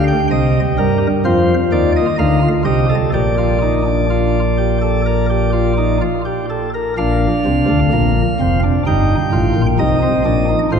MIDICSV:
0, 0, Header, 1, 2, 480
1, 0, Start_track
1, 0, Key_signature, -2, "major"
1, 0, Tempo, 941915
1, 1597, Time_signature, 4, 2, 24, 8
1, 1597, Tempo, 955414
1, 3997, Tempo, 933126
1, 5481, End_track
2, 0, Start_track
2, 0, Title_t, "Pipe organ"
2, 0, Program_c, 0, 19
2, 0, Note_on_c, 0, 38, 73
2, 0, Note_on_c, 0, 50, 85
2, 0, Note_on_c, 0, 67, 88
2, 39, Note_on_c, 0, 79, 90
2, 62, Note_off_c, 0, 50, 0
2, 64, Note_off_c, 0, 38, 0
2, 140, Note_off_c, 0, 79, 0
2, 157, Note_on_c, 0, 48, 78
2, 158, Note_on_c, 0, 75, 81
2, 159, Note_on_c, 0, 36, 74
2, 304, Note_off_c, 0, 48, 0
2, 305, Note_off_c, 0, 36, 0
2, 305, Note_off_c, 0, 75, 0
2, 397, Note_on_c, 0, 43, 88
2, 398, Note_on_c, 0, 70, 85
2, 399, Note_on_c, 0, 55, 76
2, 497, Note_off_c, 0, 67, 0
2, 544, Note_off_c, 0, 43, 0
2, 545, Note_off_c, 0, 55, 0
2, 545, Note_off_c, 0, 70, 0
2, 637, Note_on_c, 0, 72, 99
2, 638, Note_on_c, 0, 41, 80
2, 638, Note_on_c, 0, 53, 84
2, 638, Note_on_c, 0, 65, 88
2, 785, Note_off_c, 0, 72, 0
2, 786, Note_off_c, 0, 41, 0
2, 786, Note_off_c, 0, 53, 0
2, 876, Note_on_c, 0, 51, 76
2, 877, Note_on_c, 0, 74, 86
2, 879, Note_on_c, 0, 39, 79
2, 979, Note_off_c, 0, 74, 0
2, 1001, Note_on_c, 0, 75, 85
2, 1024, Note_off_c, 0, 51, 0
2, 1026, Note_off_c, 0, 39, 0
2, 1049, Note_off_c, 0, 65, 0
2, 1101, Note_off_c, 0, 75, 0
2, 1115, Note_on_c, 0, 63, 82
2, 1116, Note_on_c, 0, 38, 80
2, 1116, Note_on_c, 0, 77, 92
2, 1117, Note_on_c, 0, 50, 73
2, 1217, Note_off_c, 0, 63, 0
2, 1235, Note_on_c, 0, 65, 72
2, 1264, Note_off_c, 0, 77, 0
2, 1265, Note_off_c, 0, 38, 0
2, 1265, Note_off_c, 0, 50, 0
2, 1338, Note_off_c, 0, 65, 0
2, 1348, Note_on_c, 0, 36, 65
2, 1348, Note_on_c, 0, 48, 68
2, 1349, Note_on_c, 0, 67, 67
2, 1350, Note_on_c, 0, 75, 84
2, 1455, Note_off_c, 0, 67, 0
2, 1475, Note_on_c, 0, 69, 72
2, 1501, Note_off_c, 0, 36, 0
2, 1501, Note_off_c, 0, 48, 0
2, 1502, Note_off_c, 0, 75, 0
2, 1580, Note_off_c, 0, 69, 0
2, 1598, Note_on_c, 0, 46, 77
2, 1598, Note_on_c, 0, 67, 69
2, 1598, Note_on_c, 0, 74, 77
2, 1599, Note_on_c, 0, 34, 70
2, 1701, Note_off_c, 0, 67, 0
2, 1720, Note_on_c, 0, 65, 67
2, 1822, Note_off_c, 0, 65, 0
2, 1841, Note_on_c, 0, 63, 64
2, 1943, Note_off_c, 0, 63, 0
2, 1960, Note_on_c, 0, 62, 68
2, 2062, Note_off_c, 0, 62, 0
2, 2084, Note_on_c, 0, 65, 71
2, 2230, Note_off_c, 0, 65, 0
2, 2322, Note_on_c, 0, 67, 72
2, 2423, Note_off_c, 0, 67, 0
2, 2441, Note_on_c, 0, 69, 60
2, 2543, Note_off_c, 0, 69, 0
2, 2565, Note_on_c, 0, 70, 76
2, 2665, Note_off_c, 0, 70, 0
2, 2684, Note_on_c, 0, 67, 70
2, 2785, Note_off_c, 0, 67, 0
2, 2798, Note_on_c, 0, 65, 71
2, 2901, Note_off_c, 0, 65, 0
2, 2925, Note_on_c, 0, 63, 67
2, 3025, Note_off_c, 0, 63, 0
2, 3042, Note_on_c, 0, 65, 72
2, 3044, Note_off_c, 0, 34, 0
2, 3044, Note_off_c, 0, 46, 0
2, 3044, Note_off_c, 0, 74, 0
2, 3144, Note_off_c, 0, 65, 0
2, 3163, Note_on_c, 0, 67, 69
2, 3265, Note_off_c, 0, 67, 0
2, 3287, Note_on_c, 0, 69, 63
2, 3387, Note_off_c, 0, 69, 0
2, 3410, Note_on_c, 0, 70, 64
2, 3509, Note_off_c, 0, 70, 0
2, 3527, Note_on_c, 0, 77, 73
2, 3528, Note_on_c, 0, 46, 92
2, 3529, Note_on_c, 0, 34, 96
2, 3530, Note_on_c, 0, 62, 70
2, 3674, Note_off_c, 0, 46, 0
2, 3675, Note_off_c, 0, 34, 0
2, 3767, Note_on_c, 0, 36, 82
2, 3767, Note_on_c, 0, 48, 87
2, 3866, Note_off_c, 0, 36, 0
2, 3867, Note_off_c, 0, 48, 0
2, 3885, Note_on_c, 0, 38, 77
2, 3887, Note_on_c, 0, 50, 89
2, 3937, Note_off_c, 0, 62, 0
2, 3985, Note_off_c, 0, 38, 0
2, 3986, Note_off_c, 0, 50, 0
2, 4007, Note_on_c, 0, 34, 88
2, 4007, Note_on_c, 0, 46, 81
2, 4008, Note_on_c, 0, 58, 74
2, 4154, Note_off_c, 0, 34, 0
2, 4154, Note_off_c, 0, 46, 0
2, 4155, Note_off_c, 0, 58, 0
2, 4248, Note_on_c, 0, 29, 75
2, 4248, Note_on_c, 0, 41, 88
2, 4249, Note_on_c, 0, 60, 68
2, 4349, Note_off_c, 0, 60, 0
2, 4349, Note_off_c, 0, 77, 0
2, 4369, Note_on_c, 0, 62, 57
2, 4395, Note_off_c, 0, 29, 0
2, 4395, Note_off_c, 0, 41, 0
2, 4469, Note_off_c, 0, 62, 0
2, 4488, Note_on_c, 0, 43, 85
2, 4489, Note_on_c, 0, 31, 88
2, 4489, Note_on_c, 0, 63, 74
2, 4489, Note_on_c, 0, 79, 74
2, 4635, Note_off_c, 0, 31, 0
2, 4635, Note_off_c, 0, 43, 0
2, 4635, Note_off_c, 0, 63, 0
2, 4724, Note_on_c, 0, 33, 82
2, 4724, Note_on_c, 0, 45, 83
2, 4725, Note_on_c, 0, 65, 73
2, 4826, Note_off_c, 0, 33, 0
2, 4826, Note_off_c, 0, 45, 0
2, 4843, Note_on_c, 0, 34, 79
2, 4845, Note_on_c, 0, 46, 83
2, 4873, Note_off_c, 0, 65, 0
2, 4898, Note_off_c, 0, 79, 0
2, 4946, Note_off_c, 0, 34, 0
2, 4946, Note_off_c, 0, 46, 0
2, 4963, Note_on_c, 0, 48, 89
2, 4964, Note_on_c, 0, 36, 90
2, 4964, Note_on_c, 0, 63, 73
2, 4965, Note_on_c, 0, 75, 76
2, 5066, Note_off_c, 0, 63, 0
2, 5083, Note_on_c, 0, 60, 71
2, 5111, Note_off_c, 0, 48, 0
2, 5112, Note_off_c, 0, 36, 0
2, 5185, Note_off_c, 0, 60, 0
2, 5202, Note_on_c, 0, 34, 82
2, 5202, Note_on_c, 0, 62, 68
2, 5203, Note_on_c, 0, 46, 80
2, 5304, Note_off_c, 0, 62, 0
2, 5323, Note_on_c, 0, 63, 64
2, 5349, Note_off_c, 0, 34, 0
2, 5350, Note_off_c, 0, 46, 0
2, 5374, Note_off_c, 0, 75, 0
2, 5424, Note_off_c, 0, 63, 0
2, 5441, Note_on_c, 0, 33, 93
2, 5441, Note_on_c, 0, 45, 86
2, 5442, Note_on_c, 0, 65, 78
2, 5444, Note_on_c, 0, 72, 69
2, 5481, Note_off_c, 0, 33, 0
2, 5481, Note_off_c, 0, 45, 0
2, 5481, Note_off_c, 0, 65, 0
2, 5481, Note_off_c, 0, 72, 0
2, 5481, End_track
0, 0, End_of_file